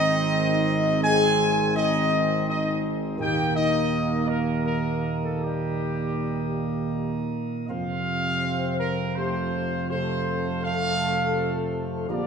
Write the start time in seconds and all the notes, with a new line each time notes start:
Already playing: G#1 G#2 D#3 C4 D#4 D#5
1.03 G#4 G#5
1.76 D#4 D#5
2.48 D#4 D#5
3.19 D#2 A#2 D#3 A#3 D#4 G4 G5
3.56 D#4 D#5
4.27 A#3 A#4
4.65 A#3 A#4
5.22 A3 A4
5.42 G3 G4
7.70 F2 C3 F3 C4 F4 F5
8.45 C5
8.79 A#4
9.16 C3 A3 G4 C5
9.55 F4
9.89 C3 A3 A4 C5
10.64 C3 A3 F5
12.09 A#1 A#2 D3 F3 A#3 F4 G4 D5